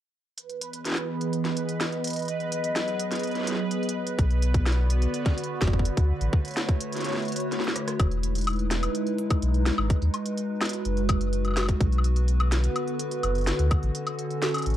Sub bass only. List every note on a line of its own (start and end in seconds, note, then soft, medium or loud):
4.19 5.07 B1 loud
5.61 5.90 F#1 medium
5.97 6.12 D2 medium
6.21 6.29 A1 loud
8.00 8.88 E1 loud
9.42 9.71 B1 medium
9.78 9.93 G#1 loud
10.02 10.10 D#2 medium
10.85 11.74 F#1 medium
11.80 12.69 B1 loud
13.23 13.52 F#1 medium
13.59 13.74 D2 medium
13.83 13.91 A1 loud
14.66 14.77 A1 medium